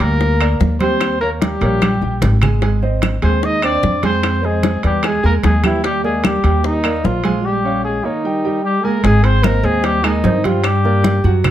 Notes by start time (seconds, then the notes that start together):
0.00 D2 G3 A#3 G4 A#4 G5, high timbale
0.21 high bongo, high conga
0.40 A#3 A#4 D5, high conga, high timbale, claves
0.60 D#2, high bongo, low bongo, high conga
0.80 G3 C4 G4 C5 G5, high conga, high timbale
1.01 high bongo, high conga, high timbale, claves
1.21 A#3 A#4 C#5, high conga
1.41 G3 G4, high bongo, high conga, high timbale
1.61 A#1 A#3 A#4 C#5, high bongo, high conga, high timbale
1.82 G3 G4 G5, high bongo, high conga, high timbale, claves
2.01 A#1 G3 G4 G5, high bongo
2.22 G#1, high bongo, low bongo, low conga, high timbale, low timbale
2.42 G#3 G#4 G#5, high bongo, low conga, high timbale, claves
2.62 G#3 G#4 G#5, high bongo, high conga, high timbale
2.83 C4 C5 D#5, high conga
3.02 high bongo, high conga, high timbale, claves
3.22 D#2 G#3 C4 G#4 C5 G#5, high timbale
3.43 D#4 D#5, high bongo, high conga
3.62 C4 D4 C5 D5 G5, high conga, high timbale, claves
3.83 F2, high bongo, low bongo, high conga
4.03 G#3 C4 G#4 C5 G#5, high conga, high timbale
4.23 high bongo, high conga, high timbale, claves
4.43 G#3 C4 G#4 C5 D#5, high conga
4.63 high bongo, high conga, high timbale
4.83 E2 G3 B3 G4 B4 D5, high bongo, high conga, high timbale
5.03 G#3 G#4 G#5, high bongo, high conga, high timbale, claves
5.23 E2 G#3 A#3 G#4 A#4 G#5, high bongo, high conga
5.43 D#2 G#3 G#4, high bongo, low bongo, high conga, high timbale, low timbale
5.64 E3 G3 E4 G4 G5, high bongo, high conga, high timbale, claves
5.83 G3 G4 G5, high bongo, high conga, high timbale
6.04 G#3 A#3 G#4 A#4 D5, high conga
6.24 G3 G4, high bongo, high conga, high timbale, claves
6.44 D#2 G3 G4 G5, high timbale
6.64 D#3 D#4, high bongo, high conga
6.84 A#3 A#4 D5, high conga, high timbale, claves
7.04 A#1 F3 F4, high bongo, low bongo, high conga
7.24 G#3 G#4 G#5, high conga, high timbale
7.44 G3 G4
7.65 C#4 C#5 F5
7.84 G#3 G#4
8.04 D#3 A#3 D#4 A#4 C#5
8.24 G3 G4 G5
8.45 G3 G4 G5
8.63 G3 G4
8.83 G#3 A#3 G#4 A#4 G#5
9.02 G#1 G#3 G#4 G#5, high bongo, high conga, high timbale
9.23 C4 C5, high bongo, high conga, high timbale
9.42 A#3 C4 A#4 C5 D#5, high bongo, high conga, high timbale, low timbale, claves
9.63 D#2 G#3 C4 G#4 C5 D#5, high conga
9.83 G3 G4, high bongo, high conga, high timbale
10.03 D#3 G#3 D#4 G#4 G#5, high bongo, high conga, high timbale, claves
10.24 G2 C4 C5 D#5, high bongo, low bongo, high conga, low timbale
10.44 F3 G3 F4 G4 G5, high bongo, high conga, high timbale
10.63 G3 G4, high bongo, high conga, high timbale, claves
10.84 A#3 A#4 D5, high bongo, high conga
11.04 high bongo, high conga, high timbale, low timbale
11.24 F#2 F#3 F#4 F#5, high conga
11.44 high bongo, high conga, low conga, high timbale, claves